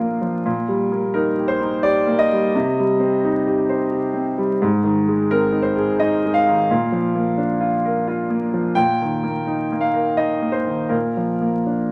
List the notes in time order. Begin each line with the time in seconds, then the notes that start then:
Already playing: A#2 F3 D4 F4 A#4 F5
0.00 A#3
0.21 F3
0.46 A#2
0.68 G3
0.92 A#3
1.14 D#4 A#4
1.38 G4
1.48 C5
1.61 D#4
1.83 G4 D5
2.07 A#3
2.19 D#5
2.32 G3
2.55 C3
2.79 G3
3.00 C4
3.25 D#4
3.47 G4
3.69 C5
3.91 G4
4.14 C4
4.38 G3
4.62 G#2
4.83 D#3
5.08 G#3
5.31 C4 A#4
5.52 D#4
5.62 C5
5.76 G#4
5.99 D#4 D#5
6.25 G#3
6.34 F5
6.48 D#3
6.71 A#2
6.92 F3
7.15 A#3
7.38 D4
7.60 F4
7.85 A#4
8.08 F4
8.30 A#3
8.54 F3
8.75 A#2 G5
9.01 D#3
9.23 A#3
9.47 D#4
9.72 A#3
9.81 F5
9.94 A#4
10.17 D#4 D#5
10.42 A#3
10.52 C5
10.67 D#3
10.89 A#2 A#4
11.17 F3
11.41 A#3
11.66 D4